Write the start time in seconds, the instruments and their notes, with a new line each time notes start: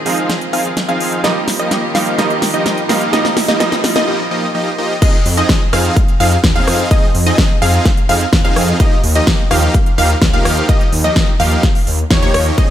Already playing: string section D#3 C4 F4 G#4, grand piano F3 G#3 C4 D#4, riser
0.05 grand piano F3 G#3 C4 D#4, supersaw synth F3 C4 D#4 G#4 F5, synth pluck F5, open hi-hat
0.18 closed hi-hat
0.30 snare, closed hi-hat
0.41 closed hi-hat
0.53 supersaw synth F3 C4 D#4 G#4 F5, synth pluck F5, open hi-hat
0.65 closed hi-hat
0.77 snare, closed hi-hat
0.89 supersaw synth F3 C4 D#4 G#4 F5, synth pluck F5, closed hi-hat
1.00 open hi-hat
1.12 closed hi-hat
1.23 string section D#3 A#3 F4 G4, grand piano F3 G3 A#3 D#4, supersaw synth F3 A#3 D#4 G4 D#5, synth pluck D#5, snare, closed hi-hat
1.48 snare, open hi-hat
1.59 supersaw synth F3 A#3 D#4 G4 D#5, synth pluck D#5, closed hi-hat
1.71 snare, closed hi-hat
1.94 grand piano F3 G3 A#3 D#4, supersaw synth F3 A#3 D#4 G4 F5, synth pluck F5, snare, open hi-hat
2.07 closed hi-hat
2.17 grand piano F3 G3 A#3 D#4, supersaw synth F3 A#3 D#4 G4 D#5, synth pluck D#5, snare, closed hi-hat
2.30 closed hi-hat
2.42 snare, open hi-hat
2.54 supersaw synth F3 A#3 D#4 G4 D#5, synth pluck D#5, closed hi-hat
2.66 snare, closed hi-hat
2.78 closed hi-hat
2.88 grand piano F3 G3 A#3 D#4, supersaw synth F3 A#3 D#4 G4 F5, synth pluck F5, snare, open hi-hat
3.01 closed hi-hat
3.12 grand piano F3 G3 A#3 D#4, supersaw synth F3 A#3 D#4 G4 D#5, string section D#4, synth pluck D#5, snare, closed hi-hat
3.25 snare
3.37 snare, open hi-hat
3.48 supersaw synth F3 A#3 D#4 G4 D#5, synth pluck D#5, snare
3.59 grand piano F3 G3 A#3 D#4, supersaw synth F3 A#3 D#4 G4 D#5, synth pluck D#5, snare, closed hi-hat
3.72 snare, closed hi-hat
3.84 snare, open hi-hat
3.96 supersaw synth F3 A#3 D#4 G4 D#5, synth pluck D#5, snare, closed hi-hat
4.07 supersaw synth F3 A#3 D#4 G4 D#5, swell
4.31 supersaw synth F3 A#3 D#4 G4 D#5
4.55 supersaw synth F3 A#3 D#4 G4 D#5
4.78 supersaw synth F3 A#3 D#4 G4 D#5
5.02 supersaw synth F3 C4 D#4 G#4 D#5, synth pluck D#5, kick, closed hi-hat, crash
5.26 detuned saw bass F2, open hi-hat
5.37 supersaw synth F3 C4 D#4 G#4 D#5, synth pluck D#5, closed hi-hat
5.49 kick, snare, closed hi-hat
5.73 detuned saw bass F2, supersaw synth F3 C4 D#4 G#4 F5, synth pluck F5, cross-stick, open hi-hat
5.85 closed hi-hat
5.96 kick, closed hi-hat
6.08 closed hi-hat
6.20 detuned saw bass F2, supersaw synth F3 C4 D#4 G#4 F5, synth pluck F5, open hi-hat
6.32 closed hi-hat
6.44 detuned saw bass D#2, kick, snare, closed hi-hat
6.56 supersaw synth F3 C4 D#4 G#4 F5, synth pluck F5, closed hi-hat
6.67 detuned saw bass F2, cross-stick, open hi-hat
6.79 closed hi-hat
6.91 supersaw synth F3 C4 D#4 G#4 D#5, synth pluck D#5, kick, closed hi-hat
7.15 detuned saw bass F2, open hi-hat
7.26 supersaw synth F3 C4 D#4 G#4 D#5, synth pluck D#5, closed hi-hat
7.38 kick, snare, closed hi-hat
7.62 detuned saw bass F2, supersaw synth F3 C4 D#4 G#4 F5, synth pluck F5, open hi-hat
7.74 closed hi-hat
7.85 kick, snare, closed hi-hat
7.97 closed hi-hat
8.09 detuned saw bass F2, supersaw synth F3 C4 D#4 G#4 F5, synth pluck F5, open hi-hat
8.21 closed hi-hat
8.33 detuned saw bass D#2, kick, snare, closed hi-hat
8.45 supersaw synth F3 C4 D#4 G#4 F5, synth pluck F5, closed hi-hat
8.56 detuned saw bass F2, cross-stick, open hi-hat
8.68 closed hi-hat
8.80 supersaw synth F3 A#3 D#4 G4 D#5, synth pluck D#5, kick, closed hi-hat
9.04 detuned saw bass D#2, open hi-hat
9.15 supersaw synth F3 A#3 D#4 G4 D#5, synth pluck D#5, closed hi-hat
9.27 kick, snare, closed hi-hat
9.51 detuned saw bass D#2, supersaw synth F3 A#3 D#4 G4 F5, synth pluck F5, cross-stick, open hi-hat
9.63 closed hi-hat
9.74 kick, closed hi-hat
9.86 closed hi-hat
9.98 detuned saw bass D#2, supersaw synth F3 A#3 D#4 G4 F5, synth pluck F5, open hi-hat
10.10 closed hi-hat
10.22 detuned saw bass C#2, kick, snare, closed hi-hat
10.33 supersaw synth F3 A#3 D#4 G4 F5, synth pluck F5, closed hi-hat
10.45 detuned saw bass D#2, cross-stick, open hi-hat
10.57 closed hi-hat
10.69 supersaw synth F3 A#3 D#4 G4 D#5, synth pluck D#5, kick, closed hi-hat
10.81 closed hi-hat
10.93 detuned saw bass D#2, open hi-hat
11.04 supersaw synth F3 A#3 D#4 G4 D#5, synth pluck D#5, closed hi-hat
11.16 kick, snare, closed hi-hat
11.40 detuned saw bass D#2, supersaw synth F3 A#3 D#4 G4 F5, synth pluck F5, open hi-hat
11.52 closed hi-hat
11.63 kick, snare, closed hi-hat
11.75 open hi-hat
11.87 detuned saw bass D#2, open hi-hat
11.99 closed hi-hat
12.11 detuned saw bass D#2, supersaw synth F3 A#3 D#4 G4 C#5, synth pluck C#5, kick, snare, closed hi-hat
12.22 supersaw synth F3 A#3 D#4 G4 C#5, synth pluck C#5, closed hi-hat
12.34 detuned saw bass D#2, supersaw synth F3 A#3 D#4 G4 C#5, synth pluck C#5, cross-stick, open hi-hat
12.46 closed hi-hat
12.58 supersaw synth F3 C4 D#4 G#4 D#5, synth pluck D#5, kick, closed hi-hat